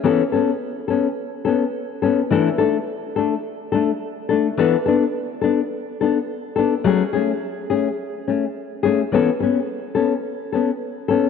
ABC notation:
X:1
M:4/4
L:1/8
Q:1/4=106
K:A
V:1 name="Nylon-string guitar"
[E,B,CA] [B,CA] z [B,CA] z [B,CA] z [B,CA] | [E,A,DA] [A,DA] z [A,DA] z [A,DA] z [A,DA] | [E,B,DA] [B,DA] z [B,DA] z [B,DA] z [B,DA] | [F,A,CG] [A,CG] z [A,CG] z [A,C] z [A,CG] |
[E,B,CA] [B,C] z [B,CA] z [B,CA] z [B,CA] |]